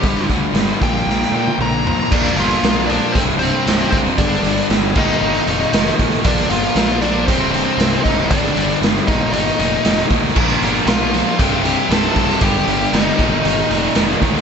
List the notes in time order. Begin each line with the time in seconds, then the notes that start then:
Already playing: G4
0.03 G1 G2 D3 G3, kick, closed hi-hat
0.17 snare
0.29 D2 G2 D3 G3, kick, closed hi-hat
0.53 G1 G2 D3 G3, snare, closed hi-hat
0.81 A#1 A#2 F3 A#3 G5, kick, closed hi-hat
0.96 snare
1.06 A#1 A#2 F3 A#3, snare
1.22 snare
1.32 A#2 F3 A#3
1.47 high tom
1.58 A#1 A#2 F3 A#3 A#5, mid tom
1.86 A#2 F3 A#3 A#5, floor tom
1.99 floor tom
2.11 A#1 A#2 F3 A#3 D4 D5, kick, crash
2.26 snare, closed hi-hat
2.36 G1 A#2 F3 A#3 F4 F5, closed hi-hat
2.51 closed hi-hat
2.62 B1 A#2 F3 A#3, snare, closed hi-hat
2.86 A#2 F3 A#3 D4 D5, closed hi-hat
3.12 C1 C2 C4 C5, kick, closed hi-hat
3.16 G2 C3
3.39 C2 G2 C3 C4 C5, closed hi-hat
3.66 C1 C2 G2 C3, snare, closed hi-hat
3.79 closed hi-hat
3.90 C1 C2 C4 C5, kick, closed hi-hat
3.94 G2 C3
4.06 closed hi-hat
4.18 G1 G2 D3 G3 D4 D5, kick, closed hi-hat
4.32 snare, closed hi-hat
4.43 G1 G2 D3 G3, closed hi-hat
4.57 closed hi-hat
4.70 G1 G2 D3 G3, snare, closed hi-hat
4.95 G1 D#2 A#2 D#3 D#4 D#5, kick, crash
5.21 G1 D#2 A#2 D#3 D#4 D#5
5.34 closed hi-hat
5.47 F1 D#2 A#2 D#3, closed hi-hat
5.60 closed hi-hat
5.73 F1 D#2 A#2 D#3, snare, closed hi-hat
5.86 closed hi-hat
5.99 A1 D#2 A#2 D#3, kick, closed hi-hat
6.12 closed hi-hat
6.24 A#1 A#2 F3 A#3 D4 D5, kick, closed hi-hat
6.38 snare, closed hi-hat
6.49 G1 A#2 F3 A#3 F4 F5, closed hi-hat
6.64 closed hi-hat
6.75 A#1 A#2 F3 A#3, snare, closed hi-hat
7.01 A#2 F3 A#3 D4 D5, closed hi-hat
7.26 C1 C2 G2 C3 C4 C5, kick, closed hi-hat
7.51 C2 G2 C3 C4 C5, closed hi-hat
7.78 C1 C2 G2 C3, snare, closed hi-hat
7.93 closed hi-hat
8.04 C1 C2 G2 C3 D#4 D#5, kick, closed hi-hat
8.18 closed hi-hat
8.30 G1 G2 D3 G3 D4 D5, kick, closed hi-hat
8.45 snare, closed hi-hat
8.55 G1 G2 D3 G3, closed hi-hat
8.71 closed hi-hat
8.81 G1 G2 D3 G3, snare, closed hi-hat
9.07 G1 D#2 A#2 D#3 D#4 D#5, kick, closed hi-hat
9.32 G1 D#2 A#2 D#3 D#4 D#5, closed hi-hat
9.46 closed hi-hat
9.59 F1 D#2 A#2 D#3, closed hi-hat
9.72 closed hi-hat
9.85 F1 D#2 A#2 D#3, snare, closed hi-hat
9.98 closed hi-hat
10.10 D2 D#2 A#2 D#3, kick, closed hi-hat
10.23 snare, closed hi-hat
10.36 A#1 A#2 F3 A#3, kick, crash
10.49 snare, closed hi-hat
10.61 G1 A#2 F3 A#3, closed hi-hat
10.75 closed hi-hat
10.86 B1 A#2 F3 A#3 F4 F5, snare, closed hi-hat
11.14 A#2 F3 A#3, closed hi-hat
11.38 C1 C2 G2 C3 G4 G5, kick, closed hi-hat
11.64 C2 G2 C3, closed hi-hat
11.89 C1 C2 G2 C3 A4 A5, snare, closed hi-hat
12.03 closed hi-hat
12.15 C1 C2 G2 C3, kick, closed hi-hat
12.29 snare, closed hi-hat
12.41 G1 G2 D3 G3 G4 G5, kick, closed hi-hat
12.54 snare, closed hi-hat
12.67 G1 G2 D3 G3, closed hi-hat
12.81 closed hi-hat
12.93 G1 G2 D3 G3 D#4 D#5, snare, closed hi-hat
13.18 G1 D#2 A#2 D#3, kick, closed hi-hat
13.44 G1 D#2 A#2 D#3, closed hi-hat
13.59 closed hi-hat
13.70 F1 D#2 A#2 D#3, closed hi-hat
13.76 D5
13.84 closed hi-hat
13.95 F1 D#2 A#2 D#3, snare, closed hi-hat
14.09 closed hi-hat
14.22 D2 D#2 A#2 D#3, kick, closed hi-hat
14.35 snare, closed hi-hat